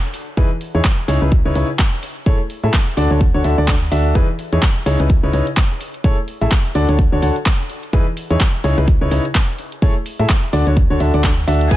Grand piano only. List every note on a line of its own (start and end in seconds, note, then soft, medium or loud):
0.37 0.48 E3 loud
0.37 0.48 D#4 medium
0.37 0.48 E4 medium
0.37 0.48 G#4 medium
0.37 0.48 B4 loud
0.75 0.83 E3 medium
0.75 0.83 D#4 medium
0.75 0.83 E4 medium
0.75 0.83 G#4 medium
0.75 0.83 C#5 medium
1.08 1.19 C#3 loud
1.08 1.19 D#4 medium
1.08 1.19 E4 medium
1.08 1.19 G#4 medium
1.08 1.19 C#5 loud
1.22 1.30 C#3 medium
1.22 1.30 D#4 medium
1.22 1.30 E4 medium
1.22 1.30 G#4 medium
1.22 1.30 B4 medium
1.45 1.53 C#3 medium
1.45 1.53 D#4 medium
1.45 1.53 E4 medium
1.45 1.53 B4 medium
1.45 1.53 C#5 medium
1.55 1.66 C#3 medium
1.55 1.66 D#4 medium
1.55 1.66 E4 medium
1.55 1.66 B4 medium
1.55 1.66 C#5 loud
2.26 2.37 A3 medium
2.26 2.37 E4 medium
2.26 2.37 G#4 medium
2.26 2.37 A4 medium
2.26 2.37 C#5 loud
2.64 2.72 A3 medium
2.64 2.72 E4 medium
2.64 2.72 G#4 medium
2.64 2.72 A4 medium
2.64 2.72 E5 medium
2.97 3.08 D3 medium
2.97 3.08 D4 medium
2.97 3.08 F#4 medium
2.97 3.08 A4 medium
2.97 3.08 D5 loud
3.11 3.19 D3 medium
3.11 3.19 D4 medium
3.11 3.19 F#4 medium
3.11 3.19 A4 medium
3.11 3.19 C#5 medium
3.34 3.42 D3 medium
3.34 3.42 D4 medium
3.34 3.42 F#4 medium
3.34 3.42 A4 medium
3.34 3.42 C#5 loud
3.44 3.55 D3 medium
3.44 3.55 D4 medium
3.44 3.55 F#4 medium
3.44 3.55 A4 medium
3.44 3.55 E5 medium
3.58 3.72 D3 medium
3.58 3.72 D4 medium
3.58 3.72 F#4 medium
3.58 3.72 A4 medium
3.58 3.72 D5 medium
3.92 4.13 D4 medium
3.92 4.13 F#4 medium
3.92 4.13 A4 medium
3.92 4.13 E5 loud
4.15 4.26 E3 loud
4.15 4.26 D#4 medium
4.15 4.26 E4 medium
4.15 4.26 G#4 medium
4.15 4.26 B4 loud
4.52 4.60 E3 medium
4.52 4.60 D#4 medium
4.52 4.60 E4 medium
4.52 4.60 G#4 medium
4.52 4.61 C#5 medium
4.86 4.97 C#3 loud
4.86 4.97 D#4 medium
4.86 4.97 E4 medium
4.86 4.97 G#4 medium
4.86 4.97 C#5 loud
5.00 5.08 C#3 medium
5.00 5.08 D#4 medium
5.00 5.08 E4 medium
5.00 5.08 G#4 medium
5.00 5.08 B4 medium
5.23 5.31 C#3 medium
5.23 5.31 D#4 medium
5.23 5.31 E4 medium
5.23 5.31 B4 medium
5.23 5.31 C#5 medium
5.33 5.44 C#3 medium
5.33 5.44 D#4 medium
5.33 5.44 E4 medium
5.33 5.44 B4 medium
5.33 5.44 C#5 loud
6.04 6.15 A3 loud
6.04 6.15 E4 medium
6.04 6.15 G#4 medium
6.04 6.15 A4 medium
6.04 6.15 C#5 loud
6.41 6.49 A3 medium
6.41 6.49 E4 medium
6.41 6.49 G#4 medium
6.41 6.49 A4 medium
6.41 6.49 E5 medium
6.75 6.86 D3 loud
6.75 6.86 D4 medium
6.75 6.86 F#4 medium
6.75 6.86 A4 medium
6.75 6.86 D5 loud
6.89 6.97 D3 medium
6.89 6.97 D4 medium
6.89 6.97 F#4 medium
6.89 6.97 A4 medium
6.89 6.97 C#5 medium
7.12 7.20 D3 medium
7.12 7.20 D4 medium
7.12 7.20 F#4 medium
7.12 7.20 A4 medium
7.12 7.20 C#5 loud
7.22 7.33 D3 medium
7.22 7.33 D4 medium
7.22 7.33 F#4 medium
7.22 7.33 A4 medium
7.22 7.33 C#5 loud
7.93 8.04 E3 medium
7.93 8.04 D#4 medium
7.93 8.04 E4 medium
7.93 8.04 G#4 medium
7.93 8.04 B4 loud
8.30 8.38 E3 medium
8.30 8.38 D#4 medium
8.30 8.38 E4 medium
8.30 8.38 G#4 medium
8.30 8.38 C#5 medium
8.64 8.75 C#3 loud
8.64 8.75 D#4 medium
8.64 8.75 E4 medium
8.64 8.75 G#4 medium
8.64 8.75 C#5 loud
8.78 8.86 C#3 medium
8.78 8.86 D#4 medium
8.78 8.86 E4 medium
8.78 8.86 G#4 medium
8.78 8.86 B4 medium
9.01 9.09 C#3 medium
9.01 9.09 D#4 medium
9.01 9.09 E4 medium
9.01 9.09 B4 medium
9.01 9.09 C#5 loud
9.11 9.22 C#3 medium
9.11 9.22 D#4 medium
9.11 9.22 E4 medium
9.11 9.22 B4 medium
9.11 9.22 C#5 loud
9.82 9.93 A3 loud
9.82 9.93 E4 medium
9.82 9.93 G#4 medium
9.82 9.93 A4 medium
9.82 9.93 C#5 loud
10.19 10.27 A3 medium
10.19 10.27 E4 medium
10.19 10.27 G#4 medium
10.19 10.27 A4 medium
10.19 10.27 E5 medium
10.53 10.64 D3 medium
10.53 10.64 D4 medium
10.53 10.64 F#4 medium
10.53 10.64 A4 medium
10.53 10.64 D5 loud
10.67 10.75 D3 medium
10.67 10.75 D4 medium
10.67 10.75 F#4 medium
10.67 10.75 A4 medium
10.67 10.75 C#5 medium
10.90 10.98 D3 medium
10.90 10.98 D4 medium
10.90 10.98 F#4 medium
10.90 10.98 A4 medium
10.90 10.98 C#5 loud
11.00 11.11 D3 medium
11.00 11.11 D4 medium
11.00 11.11 F#4 medium
11.00 11.11 A4 medium
11.00 11.11 E5 medium
11.14 11.28 D3 medium
11.14 11.28 D4 medium
11.14 11.28 F#4 medium
11.14 11.28 A4 medium
11.14 11.28 D5 loud
11.48 11.69 D4 medium
11.48 11.69 F#4 medium
11.48 11.69 A4 medium
11.48 11.69 E5 loud
11.71 11.77 E3 medium
11.71 11.77 D#4 medium
11.71 11.77 E4 medium
11.71 11.77 G#4 medium
11.71 11.77 B4 loud